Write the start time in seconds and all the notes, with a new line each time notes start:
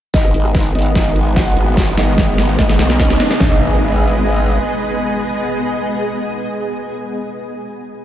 0.14 G#1 D#3 G#3 B3 D#4 D#5, kick, snare, closed hi-hat, riser
0.25 cross-stick
0.34 G#1, closed hi-hat
0.45 cross-stick
0.53 G#4, kick, snare, closed hi-hat
0.75 G#1 D#4 D#5, closed hi-hat
0.79 closed hi-hat
0.82 closed hi-hat
0.86 closed hi-hat
0.95 kick, snare, closed hi-hat
1.16 closed hi-hat
1.29 G#5
1.36 F#4 F#5, kick, snare, closed hi-hat
1.57 G#1, closed hi-hat
1.77 kick, snare, closed hi-hat
1.98 G#1 D#4 D#5, snare, closed hi-hat
2.18 kick, snare, closed hi-hat
2.38 snare, closed hi-hat
2.42 closed hi-hat
2.45 closed hi-hat
2.49 closed hi-hat
2.59 G#1 D#4 D#5, kick, snare, closed hi-hat
2.70 snare
2.79 B1, snare, closed hi-hat
2.90 snare
3.00 D#4 D#5, kick, snare, closed hi-hat
3.10 snare
3.20 snare, closed hi-hat
3.31 snare
3.40 G#1 G#3 B3 G#4 B4 D#5, kick, snare, impact
3.47 G#4
3.53 D#5
3.59 G#5